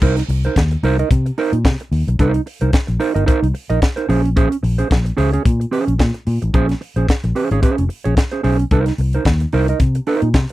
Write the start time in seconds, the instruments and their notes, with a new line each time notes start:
0.02 fingered electric bass C2, clean electric guitar D#4 A#4 C5, kick, crash
0.17 muted clean electric guitar stroke, snare, closed hi-hat
0.28 fingered electric bass C2, muted clean electric guitar stroke, open hi-hat
0.44 clean electric guitar D#4 A#4 C5, closed hi-hat
0.56 fingered electric bass D#2, kick, snare, closed hi-hat
0.71 muted clean electric guitar stroke, closed hi-hat
0.83 fingered electric bass C2, clean electric guitar D#4 A#4 C5, open hi-hat
0.99 clean electric guitar D#4 D#5, closed hi-hat
1.11 fingered electric bass C3, muted clean electric guitar stroke, kick, closed hi-hat
1.26 muted clean electric guitar stroke, closed hi-hat
1.38 clean electric guitar D#4 A#4 C5, open hi-hat
1.53 fingered electric bass A#2, muted clean electric guitar stroke, closed hi-hat
1.65 fingered electric bass C3, muted clean electric guitar stroke, kick, snare, closed hi-hat
1.80 muted clean electric guitar stroke, closed hi-hat
1.92 fingered electric bass D#2, open hi-hat
2.07 fingered electric bass B1, muted clean electric guitar stroke, closed hi-hat
2.19 fingered electric bass C2, clean electric guitar D#4 A#4 C5, kick, closed hi-hat
2.34 muted clean electric guitar stroke, closed hi-hat
2.46 muted clean electric guitar stroke, open hi-hat
2.61 fingered electric bass C2, clean electric guitar D#4 A#4 C5, closed hi-hat
2.73 muted clean electric guitar stroke, kick, snare, closed hi-hat
2.87 fingered electric bass A#1, muted clean electric guitar stroke, closed hi-hat
3.00 clean electric guitar D#4 A#4 C5, open hi-hat
3.14 fingered electric bass G1, clean electric guitar D#4 A#4 D#5, closed hi-hat
3.26 clean electric guitar D#4 A#4 C5, kick, closed hi-hat
3.42 fingered electric bass C2, muted clean electric guitar stroke, closed hi-hat
3.54 muted clean electric guitar stroke, open hi-hat
3.70 fingered electric bass A#1, clean electric guitar D#4 A#4 D#5, closed hi-hat
3.82 muted clean electric guitar stroke, kick, snare, closed hi-hat
3.96 clean electric guitar D#4 A#4 C5, closed hi-hat
4.09 fingered electric bass A#1, clean electric guitar C#4 G#4 C5, open hi-hat
4.24 muted clean electric guitar stroke, closed hi-hat
4.36 clean electric guitar C#4 G#4 C5, kick, closed hi-hat
4.51 muted clean electric guitar stroke, closed hi-hat
4.63 fingered electric bass A#1, muted clean electric guitar stroke, open hi-hat
4.78 clean electric guitar C#4 G#4 C5, closed hi-hat
4.90 fingered electric bass A#1, muted clean electric guitar stroke, kick, snare, closed hi-hat
5.05 muted clean electric guitar stroke, closed hi-hat
5.17 fingered electric bass C#2, clean electric guitar C#4 G#4 C5, open hi-hat
5.33 clean electric guitar C#4 G#4 C#5, closed hi-hat
5.45 fingered electric bass A#2, muted clean electric guitar stroke, kick, closed hi-hat
5.60 muted clean electric guitar stroke, closed hi-hat
5.71 clean electric guitar C#4 G#4 C5, open hi-hat
5.87 fingered electric bass A#1, muted clean electric guitar stroke, closed hi-hat
5.99 fingered electric bass A#2, muted clean electric guitar stroke, kick, snare, closed hi-hat
6.14 muted clean electric guitar stroke, closed hi-hat
6.27 fingered electric bass A#2, open hi-hat
6.42 fingered electric bass A1, muted clean electric guitar stroke, closed hi-hat
6.54 fingered electric bass A#1, clean electric guitar C#4 G#4 C5, kick, closed hi-hat
6.69 muted clean electric guitar stroke, snare, closed hi-hat
6.81 muted clean electric guitar stroke, open hi-hat
6.96 fingered electric bass A#1, clean electric guitar C#4 G#4 C5, closed hi-hat
7.09 muted clean electric guitar stroke, kick, snare, closed hi-hat
7.24 fingered electric bass A#1, muted clean electric guitar stroke, closed hi-hat
7.35 clean electric guitar C#4 G#4 C5, open hi-hat
7.51 fingered electric bass G#1, clean electric guitar C#4 G#4 C#5, closed hi-hat
7.62 clean electric guitar C#4 G#4 C5, kick, closed hi-hat
7.78 fingered electric bass F1, muted clean electric guitar stroke, closed hi-hat
7.89 muted clean electric guitar stroke, open hi-hat
8.04 fingered electric bass A#1, clean electric guitar C#4 G#4 C#5, closed hi-hat
8.16 muted clean electric guitar stroke, kick, snare, closed hi-hat
8.31 clean electric guitar C#4 G#4 C5, closed hi-hat
8.43 fingered electric bass B1, clean electric guitar C#4 G#4 C5, open hi-hat
8.59 muted clean electric guitar stroke, closed hi-hat
8.71 fingered electric bass C2, clean electric guitar D#4 A#4 C5, kick, closed hi-hat
8.86 muted clean electric guitar stroke, snare, closed hi-hat
8.98 fingered electric bass C2, muted clean electric guitar stroke, open hi-hat
9.13 clean electric guitar D#4 A#4 C5, closed hi-hat
9.25 fingered electric bass D#2, kick, snare, closed hi-hat
9.40 muted clean electric guitar stroke, closed hi-hat
9.52 fingered electric bass C2, clean electric guitar D#4 A#4 C5, open hi-hat
9.68 clean electric guitar D#4 A#4 D#5, closed hi-hat
9.80 fingered electric bass C3, muted clean electric guitar stroke, kick, closed hi-hat
9.95 muted clean electric guitar stroke, closed hi-hat
10.07 clean electric guitar D#4 A#4 C5, open hi-hat
10.22 fingered electric bass A#2, muted clean electric guitar stroke, closed hi-hat
10.34 fingered electric bass C3, muted clean electric guitar stroke, kick, snare, closed hi-hat
10.49 closed hi-hat